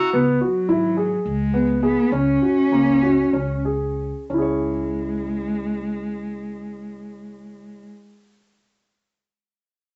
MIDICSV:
0, 0, Header, 1, 4, 480
1, 0, Start_track
1, 0, Key_signature, 4, "minor"
1, 0, Tempo, 564440
1, 115, Time_signature, 7, 3, 24, 8
1, 1557, Tempo, 605449
1, 2997, Tempo, 662983
1, 7566, End_track
2, 0, Start_track
2, 0, Title_t, "Grand piano"
2, 0, Program_c, 0, 0
2, 112, Note_on_c, 0, 59, 81
2, 321, Note_off_c, 0, 59, 0
2, 349, Note_on_c, 0, 66, 64
2, 559, Note_off_c, 0, 66, 0
2, 584, Note_on_c, 0, 64, 66
2, 796, Note_off_c, 0, 64, 0
2, 824, Note_on_c, 0, 68, 62
2, 1251, Note_off_c, 0, 68, 0
2, 1306, Note_on_c, 0, 59, 63
2, 1524, Note_off_c, 0, 59, 0
2, 1555, Note_on_c, 0, 68, 64
2, 1759, Note_off_c, 0, 68, 0
2, 1788, Note_on_c, 0, 61, 69
2, 1994, Note_off_c, 0, 61, 0
2, 2025, Note_on_c, 0, 66, 56
2, 2233, Note_off_c, 0, 66, 0
2, 2263, Note_on_c, 0, 58, 56
2, 2474, Note_off_c, 0, 58, 0
2, 2504, Note_on_c, 0, 66, 54
2, 2719, Note_off_c, 0, 66, 0
2, 2746, Note_on_c, 0, 61, 65
2, 2966, Note_off_c, 0, 61, 0
2, 3000, Note_on_c, 0, 68, 55
2, 3411, Note_off_c, 0, 68, 0
2, 3468, Note_on_c, 0, 61, 53
2, 3498, Note_on_c, 0, 64, 50
2, 3526, Note_on_c, 0, 68, 54
2, 3554, Note_on_c, 0, 73, 50
2, 6036, Note_off_c, 0, 61, 0
2, 6066, Note_off_c, 0, 64, 0
2, 6094, Note_off_c, 0, 68, 0
2, 6122, Note_off_c, 0, 73, 0
2, 7566, End_track
3, 0, Start_track
3, 0, Title_t, "Cello"
3, 0, Program_c, 1, 42
3, 352, Note_on_c, 1, 54, 71
3, 1035, Note_off_c, 1, 54, 0
3, 1072, Note_on_c, 1, 56, 82
3, 1525, Note_off_c, 1, 56, 0
3, 1554, Note_on_c, 1, 59, 79
3, 1783, Note_on_c, 1, 61, 106
3, 1795, Note_off_c, 1, 59, 0
3, 3227, Note_off_c, 1, 61, 0
3, 3463, Note_on_c, 1, 56, 64
3, 6031, Note_off_c, 1, 56, 0
3, 7566, End_track
4, 0, Start_track
4, 0, Title_t, "Upright bass"
4, 0, Program_c, 2, 32
4, 113, Note_on_c, 2, 37, 77
4, 301, Note_off_c, 2, 37, 0
4, 586, Note_on_c, 2, 32, 71
4, 968, Note_off_c, 2, 32, 0
4, 1067, Note_on_c, 2, 37, 74
4, 1646, Note_off_c, 2, 37, 0
4, 1785, Note_on_c, 2, 37, 88
4, 1972, Note_off_c, 2, 37, 0
4, 2260, Note_on_c, 2, 37, 71
4, 2646, Note_off_c, 2, 37, 0
4, 2748, Note_on_c, 2, 37, 73
4, 3323, Note_off_c, 2, 37, 0
4, 3469, Note_on_c, 2, 37, 65
4, 6037, Note_off_c, 2, 37, 0
4, 7566, End_track
0, 0, End_of_file